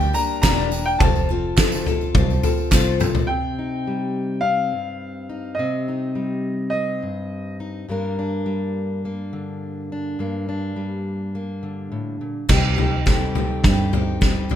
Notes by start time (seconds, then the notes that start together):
Already playing: D2 G3 A#3 D4 G4 G5
0.01 tambourine
0.13 G3 A#3 D4 G4 A#5, tambourine
0.29 tambourine
0.42 E1 G2 D3 G3 A#3 D4 G4 A#5, kick, snare, clap, tambourine
0.72 G3 A#3 D4 G4, tambourine
0.86 G5, tambourine
0.99 F1 F3 C4 F4 A4 A5, kick, floor tom, tambourine
1.15 tambourine
1.29 C4 F4 A4
1.57 F3 C4 F4 A4, kick, snare, clap, tambourine
1.72 tambourine
1.86 C4 F4 A4, floor tom, tambourine
2.01 tambourine
2.15 C2 F3 C4 F4 A4, kick, floor tom, tambourine
2.30 tambourine
2.43 C4 F4 A4, floor tom, tambourine
2.57 tambourine
2.71 C2 F3 C4 F4 A4, kick, snare, clap, tambourine
3.00 C4 F4 A4, mid tom, tambourine
3.15 floor tom, tambourine
3.27 C3 C4 G5
3.59 D#4
3.87 G3
4.41 C4 F5
4.72 G2
5.29 D#4
5.55 C3 D#5
5.59 C4
5.88 D#4
6.15 G3
6.70 C4 D#5
7.03 G2
7.60 D#4
7.89 G2 G3 A#3 D4 A#4
8.19 D4
8.46 G3
9.05 A#3
9.33 D3
9.92 D4
10.19 G2 A#3
10.49 D4
10.76 G3
11.35 A#3
11.63 D3
11.92 A2
12.21 A#2
12.49 C2 C3 G3 C4 D#4 G4, kick, snare, floor tom, crash
12.76 C4 D#4 G4, floor tom
13.06 G3 C4 D#4 G4 A4, kick, snare, floor tom
13.35 C4 D#4 G4, floor tom
13.64 G2 C3 G3 C4 D#4 G4, kick, snare, floor tom
13.93 C4 D#4 G4, floor tom
14.21 G3 C4 D#4 G4, kick, snare, floor tom
14.49 C4 D#4 G4, floor tom